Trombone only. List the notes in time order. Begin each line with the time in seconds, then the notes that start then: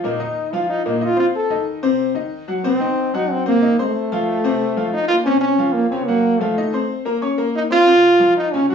0.04 D#4
0.53 F4
0.69 D#4
0.86 D#4
1.03 F4
1.20 F4
1.36 A4
2.64 C4
3.15 D#4
3.31 C4
3.47 A#3
3.80 A3
4.93 D#4
5.08 F4
5.24 C#4
5.41 C#4
5.73 A#3
5.90 C4
6.06 A#3
6.39 A3
7.56 D#4
7.72 F4
8.37 D#4
8.53 C#4
8.69 F#4